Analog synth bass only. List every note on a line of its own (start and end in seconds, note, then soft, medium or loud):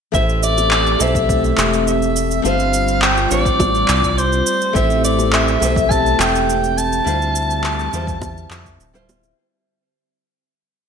0.14 0.96 A1 loud
1.00 1.54 B1 medium
1.58 2.41 E1 medium
2.45 3.27 G1 medium
3.31 3.85 A1 medium
3.89 4.43 C2 medium
4.75 5.58 A1 loud
5.62 6.16 B1 medium
6.19 7.02 E1 medium
7.06 7.89 D2 loud
7.93 8.47 E2 medium
8.50 8.79 F2 medium
8.79 9.33 D1 medium